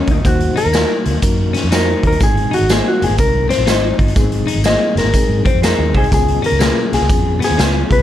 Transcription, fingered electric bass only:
0, 0, Header, 1, 2, 480
1, 0, Start_track
1, 0, Tempo, 488998
1, 249, Time_signature, 4, 2, 24, 8
1, 7875, End_track
2, 0, Start_track
2, 0, Title_t, "Fingered electric bass"
2, 0, Program_c, 0, 33
2, 74, Note_on_c, 0, 38, 80
2, 201, Note_off_c, 0, 38, 0
2, 240, Note_on_c, 0, 39, 100
2, 473, Note_off_c, 0, 39, 0
2, 639, Note_on_c, 0, 39, 92
2, 818, Note_off_c, 0, 39, 0
2, 1039, Note_on_c, 0, 37, 87
2, 1102, Note_off_c, 0, 37, 0
2, 1123, Note_on_c, 0, 39, 87
2, 1186, Note_off_c, 0, 39, 0
2, 1202, Note_on_c, 0, 42, 90
2, 1496, Note_off_c, 0, 42, 0
2, 1607, Note_on_c, 0, 41, 82
2, 1898, Note_off_c, 0, 41, 0
2, 1998, Note_on_c, 0, 39, 79
2, 2124, Note_off_c, 0, 39, 0
2, 2164, Note_on_c, 0, 32, 98
2, 2395, Note_off_c, 0, 32, 0
2, 2564, Note_on_c, 0, 32, 94
2, 2741, Note_off_c, 0, 32, 0
2, 2962, Note_on_c, 0, 30, 79
2, 3024, Note_off_c, 0, 30, 0
2, 3037, Note_on_c, 0, 32, 86
2, 3102, Note_off_c, 0, 32, 0
2, 3131, Note_on_c, 0, 36, 84
2, 3422, Note_off_c, 0, 36, 0
2, 3518, Note_on_c, 0, 34, 76
2, 3604, Note_off_c, 0, 34, 0
2, 3604, Note_on_c, 0, 32, 96
2, 3835, Note_off_c, 0, 32, 0
2, 3917, Note_on_c, 0, 31, 79
2, 4043, Note_off_c, 0, 31, 0
2, 4088, Note_on_c, 0, 32, 90
2, 4317, Note_off_c, 0, 32, 0
2, 4475, Note_on_c, 0, 32, 98
2, 4655, Note_off_c, 0, 32, 0
2, 4863, Note_on_c, 0, 30, 92
2, 4931, Note_off_c, 0, 30, 0
2, 4944, Note_on_c, 0, 32, 85
2, 5014, Note_off_c, 0, 32, 0
2, 5190, Note_on_c, 0, 44, 94
2, 5310, Note_off_c, 0, 44, 0
2, 5358, Note_on_c, 0, 42, 72
2, 5421, Note_off_c, 0, 42, 0
2, 5438, Note_on_c, 0, 41, 71
2, 5618, Note_off_c, 0, 41, 0
2, 5681, Note_on_c, 0, 39, 84
2, 5835, Note_off_c, 0, 39, 0
2, 5835, Note_on_c, 0, 36, 81
2, 5962, Note_off_c, 0, 36, 0
2, 6006, Note_on_c, 0, 37, 97
2, 6237, Note_off_c, 0, 37, 0
2, 6398, Note_on_c, 0, 37, 98
2, 6577, Note_off_c, 0, 37, 0
2, 6795, Note_on_c, 0, 35, 92
2, 6859, Note_off_c, 0, 35, 0
2, 6883, Note_on_c, 0, 37, 93
2, 6946, Note_off_c, 0, 37, 0
2, 6960, Note_on_c, 0, 41, 79
2, 7255, Note_off_c, 0, 41, 0
2, 7365, Note_on_c, 0, 39, 73
2, 7428, Note_off_c, 0, 39, 0
2, 7448, Note_on_c, 0, 37, 90
2, 7678, Note_off_c, 0, 37, 0
2, 7761, Note_on_c, 0, 36, 90
2, 7875, Note_off_c, 0, 36, 0
2, 7875, End_track
0, 0, End_of_file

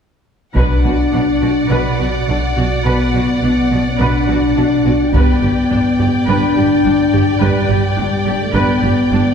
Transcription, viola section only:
0, 0, Header, 1, 2, 480
1, 0, Start_track
1, 0, Key_signature, 2, "minor"
1, 0, Tempo, 570342
1, 469, Time_signature, 4, 2, 24, 8
1, 7863, End_track
2, 0, Start_track
2, 0, Title_t, "Viola section"
2, 0, Program_c, 0, 48
2, 474, Note_on_c, 0, 71, 38
2, 696, Note_off_c, 0, 71, 0
2, 717, Note_on_c, 0, 66, 28
2, 785, Note_off_c, 0, 66, 0
2, 950, Note_on_c, 0, 62, 29
2, 1017, Note_off_c, 0, 62, 0
2, 1194, Note_on_c, 0, 66, 32
2, 1262, Note_off_c, 0, 66, 0
2, 1442, Note_on_c, 0, 71, 43
2, 1665, Note_off_c, 0, 71, 0
2, 1678, Note_on_c, 0, 66, 33
2, 1745, Note_off_c, 0, 66, 0
2, 1930, Note_on_c, 0, 62, 36
2, 1997, Note_off_c, 0, 62, 0
2, 2163, Note_on_c, 0, 66, 37
2, 2230, Note_off_c, 0, 66, 0
2, 2406, Note_on_c, 0, 71, 42
2, 2629, Note_off_c, 0, 71, 0
2, 2640, Note_on_c, 0, 66, 35
2, 2708, Note_off_c, 0, 66, 0
2, 2885, Note_on_c, 0, 62, 31
2, 2952, Note_off_c, 0, 62, 0
2, 3123, Note_on_c, 0, 66, 29
2, 3190, Note_off_c, 0, 66, 0
2, 3363, Note_on_c, 0, 71, 44
2, 3587, Note_off_c, 0, 71, 0
2, 3607, Note_on_c, 0, 66, 36
2, 3674, Note_off_c, 0, 66, 0
2, 3846, Note_on_c, 0, 62, 37
2, 3914, Note_off_c, 0, 62, 0
2, 4089, Note_on_c, 0, 66, 34
2, 4156, Note_off_c, 0, 66, 0
2, 4326, Note_on_c, 0, 71, 43
2, 4548, Note_off_c, 0, 71, 0
2, 4566, Note_on_c, 0, 67, 33
2, 4633, Note_off_c, 0, 67, 0
2, 4805, Note_on_c, 0, 62, 39
2, 4872, Note_off_c, 0, 62, 0
2, 5042, Note_on_c, 0, 67, 39
2, 5109, Note_off_c, 0, 67, 0
2, 5286, Note_on_c, 0, 71, 50
2, 5508, Note_off_c, 0, 71, 0
2, 5517, Note_on_c, 0, 67, 34
2, 5585, Note_off_c, 0, 67, 0
2, 5759, Note_on_c, 0, 62, 36
2, 5827, Note_off_c, 0, 62, 0
2, 6001, Note_on_c, 0, 67, 46
2, 6068, Note_off_c, 0, 67, 0
2, 6237, Note_on_c, 0, 71, 48
2, 6459, Note_off_c, 0, 71, 0
2, 6474, Note_on_c, 0, 67, 35
2, 6541, Note_off_c, 0, 67, 0
2, 6714, Note_on_c, 0, 62, 37
2, 6781, Note_off_c, 0, 62, 0
2, 6955, Note_on_c, 0, 67, 47
2, 7022, Note_off_c, 0, 67, 0
2, 7190, Note_on_c, 0, 71, 51
2, 7413, Note_off_c, 0, 71, 0
2, 7436, Note_on_c, 0, 67, 41
2, 7504, Note_off_c, 0, 67, 0
2, 7676, Note_on_c, 0, 62, 48
2, 7744, Note_off_c, 0, 62, 0
2, 7863, End_track
0, 0, End_of_file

